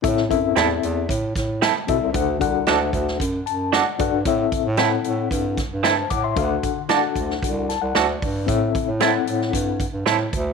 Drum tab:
HH |x-x-x-x-x-x-x-x-|x-x-x-x-x-x-x-x-|x-x-x-x-x-x-x-x-|x-x-x-x-x-x-x-o-|
SD |-o--o-----o-o---|----o--o----o---|----o-----o-o---|----o--o--o-o---|
BD |o-o-----o-o---o-|o-o---o-o-----o-|o-o-----o-o---o-|o-o---o-o-----o-|

HH |x-x-x-x-x-x-x-x-|
SD |----o--o----o---|
BD |o-o-----o-o---o-|